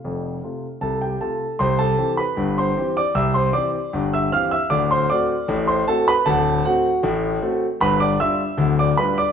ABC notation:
X:1
M:2/4
L:1/16
Q:1/4=77
K:F
V:1 name="Grand piano"
f4 [Aa] [Gg] [Aa]2 | [K:C] [cc'] [Aa]2 [Bb]2 [cc']2 [dd'] | [ee'] [cc'] [dd']3 [ee'] [ff'] [ee'] | [dd'] [cc'] [dd']3 [cc'] [Aa] [Bb] |
[A^fa]2 [^Ff]2 z4 | [Bb] [dd'] [ee']3 [dd'] [Bb] [dd'] |]
V:2 name="Grand piano" clef=bass
[F,,,F,,]2 [C,A,F]2 [C,,C,]2 [C,A,F]2 | [K:C] [C,,C,]2 [E,CG]2 [G,,,G,,]2 [E,CG]2 | [C,,C,]2 [E,CG]2 [G,,,G,,]2 [E,CG]2 | [D,,,D,,]2 [A,C^F]2 [A,,,A,,]2 [A,CF]2 |
[D,,,D,,]2 [A,C]2 [A,,,A,,]2 [A,C^F]2 | [G,,,G,,]2 [G,DF]2 [D,,,D,,]2 [G,DF]2 |]